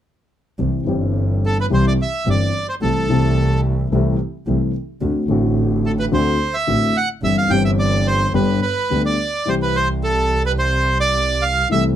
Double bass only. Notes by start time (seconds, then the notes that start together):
0.59 C2
0.87 G1
1.71 C2
2.26 G1
2.81 C2
3.09 C2
3.92 C2
4.47 C2
5.01 D2
5.29 A1
6.12 D2
6.68 A1
7.22 G1
7.50 G1
8.33 G1
8.90 D2
9.47 C2
11.71 C2